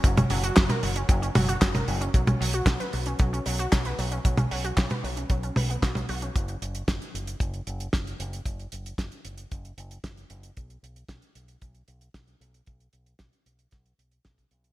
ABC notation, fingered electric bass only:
X:1
M:4/4
L:1/8
Q:1/4=114
K:Blyd
V:1 name="Fingered electric bass" clef=bass
F,,, F,,, F,,, F,,, F,,, F,,, F,,, F,,, | B,,, B,,, B,,, B,,, B,,, B,,, B,,, B,,, | B,,, B,,, B,,, B,,, B,,, B,,, B,,, B,,, | F,,, F,,, F,,, F,,, F,,, F,,, F,,, F,,, |
F,,, F,,, F,,, F,,, F,,, F,,, F,,, F,,, | B,,, B,,, B,,, B,,, B,,, B,,, B,,, B,,, | B,,, B,,, B,,, B,,, B,,, B,,, B,,, B,,, |]